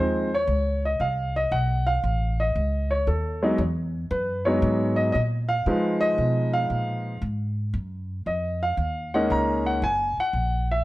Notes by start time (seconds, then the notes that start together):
Already playing: D#2 F3 G#3 C4 D#4
0.00 C5
0.34 C#5
0.47 C#2
0.85 D#5
1.00 C2 F5
1.36 D#5
1.51 B1 F#5
1.87 F5
2.04 A1
2.40 D#5
2.56 C#2
2.91 C#5
3.07 D#2 A4
3.43 F#3 G#3 B3 D#4
3.58 E2
4.11 F#2 B4
4.45 F#3 G#3 B3 D#4 C#5
4.62 G#2
4.96 D#5
5.12 A#2 D#5
5.49 F5
5.66 C#3 F3 G#3 D#4 B4
6.01 D#5
6.18 B2
6.53 F5
6.70 A#2
7.22 G#2
7.74 F#2
8.26 F2 D#5
8.63 F5
8.77 D#2
9.14 G#3 A#3 C#4 D#4 F#5
9.30 C#2 A#5
9.66 F#5
9.82 F#1 G#5
10.17 F#5, muted upright bass stroke
10.33 A#1
10.71 E5